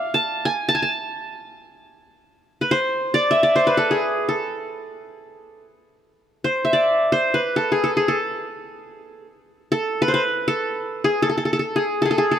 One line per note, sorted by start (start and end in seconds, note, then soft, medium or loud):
0.00 0.39 D5 medium
0.00 0.60 F5 medium
0.14 0.51 A5 medium
0.45 0.74 G#5 medium
0.69 0.81 A5 medium
0.75 0.88 G#5 medium
0.82 2.09 A5 medium
2.61 2.77 B4 medium
2.71 3.55 C5 medium
3.14 3.43 D5 medium
3.31 4.23 E5 medium
3.43 4.42 D5 medium
3.56 3.73 C5 medium
3.67 4.76 B4 medium
3.77 3.97 A4 medium
3.91 4.35 G#4 medium
4.29 5.64 A4 medium
6.44 7.12 C5 medium
6.65 7.57 E5 medium
6.73 7.72 D5 medium
7.12 7.40 C5 medium
7.34 8.43 B4 medium
7.56 7.78 A4 medium
7.72 7.90 G#4 medium
7.84 8.03 A4 medium
7.97 8.14 G#4 medium
8.08 9.25 A4 medium
9.72 10.47 A4 medium
10.02 10.13 B4 medium
10.08 10.20 C5 medium
10.14 11.23 B4 medium
10.48 11.10 A4 medium
11.04 11.28 G#4 medium
11.22 11.29 A4 medium
11.29 11.37 A4 medium
11.38 11.45 A4 medium
11.45 11.52 A4 medium
11.53 11.59 A4 medium
11.59 11.82 A4 medium
11.76 12.05 G#4 medium
12.02 12.17 G#4 medium
12.02 12.10 A4 medium
12.11 12.24 A4 medium
12.18 12.37 G#4 medium
12.31 12.39 A4 medium